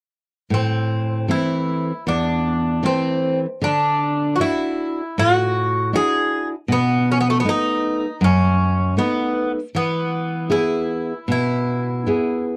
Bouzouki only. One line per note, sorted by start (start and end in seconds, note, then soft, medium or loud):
0.54 1.33 C4 medium
1.31 2.04 E4 medium
2.08 2.85 D4 medium
2.86 3.39 C4 medium
3.64 4.36 D4 medium
4.36 4.41 F#4 medium
4.41 5.19 E4 medium
5.19 5.90 F#4 medium
5.96 6.48 G#4 medium
6.72 7.11 B3 medium
7.12 7.19 C#4 medium
7.21 7.28 B3 medium
7.30 7.37 A3 medium
7.40 7.46 B3 medium
7.49 8.24 D#4 medium
8.24 8.94 C#4 medium
8.99 9.51 B3 medium
9.76 10.54 B3 medium
10.52 11.30 E4 medium
11.32 12.44 E4 medium